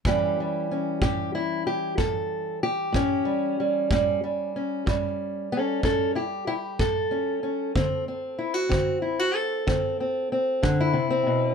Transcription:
0.05 0.63 A2 medium
0.05 3.87 E3 medium
0.05 0.40 G3 medium
0.05 0.71 C#4 medium
0.05 1.02 G4 medium
0.05 kick medium
0.40 3.24 G3 soft
0.71 2.94 C#4 soft
1.02 1.59 A2 medium
1.02 1.34 G4 medium
1.02 kick medium
1.35 1.66 E4 medium
1.67 1.98 G4 medium
1.98 2.55 A2 medium
1.98 2.62 A4 medium
1.98 kick medium
2.63 3.59 G4 medium
2.92 3.51 A2 medium
2.92 4.55 C#4 medium
2.92 kick medium
3.25 3.58 G3 soft
3.60 3.91 G3 soft
3.91 4.48 A2 medium
3.91 4.22 G3 medium
3.91 kick medium
4.24 4.86 G3 soft
4.56 5.51 C#4 soft
4.86 5.44 A2 medium
4.86 7.75 G3 soft
4.86 kick medium
5.52 5.82 C#4 medium
5.52 5.83 A4 medium
5.83 6.41 A2 medium
5.83 6.15 C#4 medium
5.83 6.15 A4 medium
5.83 kick medium
6.15 6.20 E4 medium
6.15 6.46 G4 medium
6.47 6.52 E4 medium
6.47 6.79 G4 medium
6.79 7.37 A2 medium
6.79 8.38 A4 medium
6.79 kick medium
7.11 7.42 C#4 soft
7.43 7.71 C#4 soft
7.76 8.33 D3 medium
7.76 8.07 C4 medium
7.76 kick medium
8.08 8.69 C4 soft
8.39 8.54 E4 soft
8.54 9.02 F#4 soft
8.69 9.28 D3 medium
8.69 9.67 C4 soft
8.69 kick medium
9.02 9.19 E4 soft
9.19 9.35 F#4 soft
9.35 10.79 A4 loud
9.67 10.25 D3 medium
9.67 9.99 C4 soft
9.67 kick medium
10.00 10.31 C4 soft
10.32 11.09 C4 soft
10.63 10.95 D3 medium
10.63 kick medium
10.80 11.54 E4 medium
10.93 11.26 C3 medium
11.10 11.54 C4 medium
11.26 11.54 B2 medium

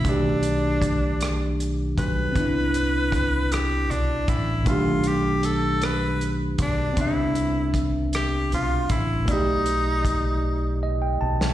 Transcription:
0.01 2.30 B2 medium
0.01 2.31 A3 soft
0.01 kick loud
0.01 closed hi-hat medium
0.05 1.94 B1 medium
0.05 2.33 D#3 soft
0.05 2.32 D4 medium
0.05 1.61 D4 medium
0.05 2.34 G4 medium
0.43 closed hi-hat medium
0.82 kick medium
0.82 closed hi-hat medium
1.21 cross-stick medium
1.21 closed hi-hat medium
1.60 closed hi-hat soft
1.98 2.33 B1 medium
1.98 3.54 B4 medium
1.98 kick medium
1.98 closed hi-hat medium
2.32 4.62 B3 medium
2.32 4.61 C4 soft
2.32 kick medium
2.36 3.86 C2 medium
2.36 4.64 D4 medium
2.36 closed hi-hat medium
2.40 4.65 E4 medium
2.74 closed hi-hat medium
3.12 kick medium
3.12 closed hi-hat medium
3.52 3.92 G4 medium
3.52 cross-stick medium
3.52 closed hi-hat medium
3.91 4.25 B1 medium
3.91 4.30 D4 medium
3.91 closed hi-hat soft
4.28 4.67 A1 medium
4.28 4.70 E4 medium
4.28 kick medium
4.28 closed hi-hat medium
4.63 6.55 B1 medium
4.63 6.92 B2 medium
4.63 6.93 A3 medium
4.63 kick medium
4.63 closed hi-hat medium
4.67 6.95 D#3 medium
4.67 6.94 D4 medium
4.67 5.09 F4 medium
4.71 6.96 G4 medium
5.04 5.47 G4 medium
5.04 closed hi-hat medium
5.43 5.86 A4 medium
5.43 closed hi-hat medium
5.81 6.33 B4 medium
5.81 cross-stick loud
5.81 closed hi-hat medium
6.21 closed hi-hat soft
6.58 6.94 B1 medium
6.58 7.02 D4 medium
6.58 kick medium
6.58 closed hi-hat medium
6.93 9.24 B3 medium
6.93 9.22 C4 medium
6.93 closed hi-hat medium
6.97 8.47 C2 medium
6.97 9.25 D4 medium
6.97 7.76 E4 medium
6.97 kick medium
7.01 9.26 E5 medium
7.35 closed hi-hat medium
7.74 kick medium
7.74 closed hi-hat medium
8.13 8.50 G4 medium
8.13 cross-stick medium
8.13 closed hi-hat medium
8.52 8.87 B1 medium
8.52 8.89 F4 medium
8.52 closed hi-hat medium
8.89 9.25 A1 medium
8.89 9.32 E4 medium
8.89 kick medium
8.89 closed hi-hat medium
9.24 11.53 B2 medium
9.24 11.54 A3 soft
9.24 kick medium
9.24 closed hi-hat medium
9.29 11.17 B1 medium
9.29 11.54 D#4 medium
9.29 10.83 D#4 medium
9.29 11.54 D5 medium
9.33 11.54 G4 medium
9.66 closed hi-hat medium
10.05 kick medium
10.05 closed hi-hat medium
10.83 11.00 D#5 medium
11.02 11.19 G5 medium
11.21 11.54 B1 medium
11.21 11.54 A5 medium
11.41 snare medium

